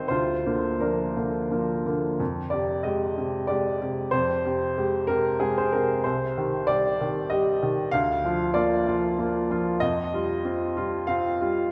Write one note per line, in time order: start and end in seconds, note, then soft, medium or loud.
0.00 0.12 C2 medium
0.00 0.12 D#3 soft
0.00 0.12 G3 soft
0.00 0.12 C4 medium
0.00 0.12 D#4 medium
0.00 0.11 G4 soft
0.00 0.08 C5 medium
0.00 0.12 D#5 medium
0.00 0.11 F5 medium
0.08 2.16 D2 soft
0.08 0.77 F4 soft
0.08 0.80 C5 medium
0.46 0.78 D3 soft
0.46 0.78 A#3 soft
0.80 1.13 F3 soft
0.80 1.13 A#3 soft
0.80 1.82 D4 soft
0.80 1.86 A#4 soft
1.16 1.48 D3 soft
1.16 1.48 A#3 soft
1.52 1.83 F3 soft
1.52 1.83 A#3 soft
1.86 2.16 D3 soft
1.86 2.17 A#3 soft
2.20 4.08 F2 medium
2.50 2.81 C3 soft
2.50 2.81 G4 soft
2.50 2.83 D5 medium
2.83 3.14 G#3 soft
2.83 3.14 G4 soft
2.83 3.48 D#5 medium
3.17 3.46 C3 soft
3.17 3.46 G4 soft
3.47 3.77 G#3 soft
3.47 3.78 G4 soft
3.47 4.11 D5 medium
3.82 4.10 C3 soft
3.82 4.10 G4 soft
4.11 6.00 F2 medium
4.11 5.08 C5 medium
4.45 4.74 C3 soft
4.45 4.74 G4 soft
4.78 5.06 G#3 soft
4.78 5.06 G4 soft
5.07 5.37 C3 soft
5.07 5.37 G4 medium
5.07 5.40 A#4 medium
5.40 5.70 G#3 soft
5.40 5.70 G4 soft
5.40 5.56 G#4 medium
5.58 5.73 C5 medium
5.72 6.02 C3 soft
5.72 6.02 G4 soft
5.72 6.04 A#4 medium
6.04 7.89 C2 medium
6.04 6.68 C5 medium
6.38 6.65 D#3 soft
6.38 6.66 G4 soft
6.67 6.97 G3 soft
6.67 6.97 G4 soft
6.67 7.30 D5 medium
7.01 7.28 D#3 soft
7.01 7.28 G4 soft
7.30 7.59 G3 soft
7.30 7.59 G4 soft
7.30 7.92 D#5 medium
7.62 7.90 D#3 soft
7.62 7.90 G4 soft
7.91 9.77 D2 medium
7.91 8.54 F5 medium
8.25 8.52 F3 soft
8.25 8.53 F4 soft
8.54 8.83 A#3 soft
8.54 8.84 F4 soft
8.54 9.17 D5 medium
8.87 9.15 F3 soft
8.87 9.15 F4 medium
9.19 9.47 A#3 soft
9.19 9.47 F4 soft
9.51 9.79 F3 soft
9.51 9.79 F4 medium
9.80 11.67 F2 medium
9.80 11.07 D#5 medium
10.14 10.41 G3 soft
10.14 10.41 F4 soft
10.45 10.73 C4 soft
10.45 10.73 F4 soft
10.77 11.05 G3 soft
10.77 11.05 F4 medium
11.07 11.37 C4 soft
11.07 11.37 F4 soft
11.07 11.70 F5 medium
11.41 11.68 G3 soft
11.41 11.68 F4 soft